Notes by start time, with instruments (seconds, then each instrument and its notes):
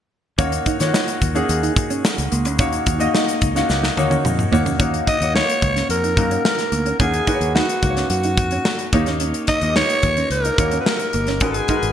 0.38 fingered electric bass D#2, grand piano A#3 D#4 F#4 C#5, clean electric guitar C#4, kick, closed hi-hat, shaker
0.52 closed hi-hat, shaker
0.66 clean electric guitar D#4, kick, closed hi-hat, shaker
0.80 fingered electric bass D#3, grand piano A#3 D#4 F4 C#5, muted clean electric guitar stroke, snare, closed hi-hat, shaker
0.87 grand piano F#4
0.93 clean electric guitar D#4, snare, shaker
1.08 muted clean electric guitar stroke, closed hi-hat, shaker
1.21 fingered electric bass D#2, kick, closed hi-hat, shaker
1.34 grand piano A#3 D#4 F#4 G#4, clean electric guitar C#4, closed hi-hat, shaker
1.49 fingered electric bass D#2, closed hi-hat, shaker
1.63 clean electric guitar D#4, closed hi-hat, shaker
1.76 muted clean electric guitar stroke, kick, closed hi-hat, shaker
1.90 clean electric guitar C#4, closed hi-hat, shaker
2.04 muted clean electric guitar stroke, snare, shaker
2.18 fingered electric bass C#2, closed hi-hat, shaker
2.32 fingered electric bass C#2, clean electric guitar A#3, closed hi-hat, shaker
2.45 fingered electric bass D2, clean electric guitar C#4, closed hi-hat, shaker
2.58 fingered electric bass D#2, grand piano A#3 D#4 F#4 C#5, clean electric guitar C#4, kick, closed hi-hat, shaker
2.73 closed hi-hat, shaker
2.86 fingered electric bass D#2, clean electric guitar D#4, kick, closed hi-hat, shaker
2.99 grand piano A#3 D#4 F#4 D#5, muted clean electric guitar stroke, closed hi-hat, shaker
3.14 clean electric guitar D#4, snare, shaker
3.28 muted clean electric guitar stroke, closed hi-hat, shaker
3.41 fingered electric bass C#2, kick, closed hi-hat, shaker
3.55 grand piano A#3 D#4 F#4 C#5, clean electric guitar C#4, snare, closed hi-hat, shaker
3.69 fingered electric bass C#2, snare, shaker
3.83 clean electric guitar D#4, snare, shaker
3.97 fingered electric bass D#2, grand piano A#3 D#4 F#4 C#5, muted clean electric guitar stroke, high tom, shaker
4.10 clean electric guitar C#4, high tom, shaker
4.24 fingered electric bass F2, muted clean electric guitar stroke, mid tom, shaker
4.39 mid tom, shaker
4.51 fingered electric bass D#2, clean electric guitar A#3, grand piano A#3 D#4 F#4 C#5, floor tom, shaker
4.65 clean electric guitar C#4, floor tom, shaker
4.79 fingered electric bass D#2, grand piano A#3 D#4 F#4 C#5, clean electric guitar C#4, kick, closed hi-hat
4.94 closed hi-hat
5.06 clean electric guitar D#4, alto saxophone D#5, kick, closed hi-hat
5.21 fingered electric bass D#2, grand piano A#3 D#4 F#4 C#5, muted clean electric guitar stroke, closed hi-hat
5.34 clean electric guitar D#4, alto saxophone C#5, snare
5.48 muted clean electric guitar stroke, closed hi-hat
5.62 fingered electric bass C#2, kick, closed hi-hat
5.76 clean electric guitar C#4, snare, closed hi-hat
5.89 fingered electric bass F2, alto saxophone A#4, closed hi-hat
6.04 clean electric guitar D#4, closed hi-hat
6.17 fingered electric bass F#2, grand piano A#3 D#4 F#4 A#4, muted clean electric guitar stroke, kick, closed hi-hat
6.31 clean electric guitar C#4, closed hi-hat
6.45 alto saxophone A#4, muted clean electric guitar stroke, snare
6.59 snare, closed hi-hat
6.72 fingered electric bass D2, clean electric guitar A#3, closed hi-hat
6.86 clean electric guitar C#4, closed hi-hat
7.00 fingered electric bass D#2, grand piano A#3 D#4 F#4 G#4, clean electric guitar C#4, alto saxophone G#4, kick, closed hi-hat
7.14 closed hi-hat
7.27 grand piano A#3 D#4 F#4 B4, clean electric guitar D#4, kick, closed hi-hat
7.34 grand piano C#5
7.41 fingered electric bass D#2, muted clean electric guitar stroke, closed hi-hat
7.55 clean electric guitar D#4, alto saxophone F#4, snare
7.69 muted clean electric guitar stroke, closed hi-hat
7.82 fingered electric bass C#2, grand piano A#3 D#4 F#4 B4, kick, closed hi-hat
7.90 grand piano C#5
7.97 clean electric guitar C#4, snare, closed hi-hat
8.10 fingered electric bass F#2, alto saxophone F#4, closed hi-hat
8.23 clean electric guitar D#4, closed hi-hat
8.37 fingered electric bass F2, muted clean electric guitar stroke, kick, closed hi-hat
8.51 clean electric guitar C#4, closed hi-hat
8.65 muted clean electric guitar stroke, snare
8.79 closed hi-hat
8.93 fingered electric bass D#2, grand piano A#3 D#4 G4 C#5, clean electric guitar A#3, kick, closed hi-hat
9.06 clean electric guitar C#4, snare, closed hi-hat
9.20 clean electric guitar C#4, closed hi-hat
9.34 closed hi-hat
9.47 clean electric guitar D#4, alto saxophone D#5, kick, closed hi-hat
9.61 fingered electric bass D#2, grand piano A#3 D#4 F4 D#5, muted clean electric guitar stroke, closed hi-hat
9.69 grand piano G4
9.76 clean electric guitar D#4, alto saxophone C#5, snare
9.90 muted clean electric guitar stroke, closed hi-hat
10.03 fingered electric bass D#2, kick, closed hi-hat
10.17 clean electric guitar C#4, closed hi-hat
10.30 fingered electric bass C#2, alto saxophone A#4, closed hi-hat
10.45 clean electric guitar D#4, closed hi-hat
10.58 fingered electric bass D#2, grand piano A#3 D#4 F#4 C#5, muted clean electric guitar stroke, kick, closed hi-hat
10.65 grand piano G4
10.71 clean electric guitar C#4, closed hi-hat
10.80 alto saxophone B4
10.86 alto saxophone A#4, muted clean electric guitar stroke, snare
10.99 closed hi-hat
11.13 fingered electric bass G1, clean electric guitar A#3, closed hi-hat
11.27 clean electric guitar C#4, snare, closed hi-hat
11.40 fingered electric bass G#1, grand piano G#3 D#4 F#4 B4, clean electric guitar C#4, alto saxophone G#4, kick, closed hi-hat
11.54 closed hi-hat
11.68 grand piano G#3 D#4 F#4 A#4, clean electric guitar D#4, kick, closed hi-hat
11.76 grand piano B4
11.83 fingered electric bass G#1, muted clean electric guitar stroke, closed hi-hat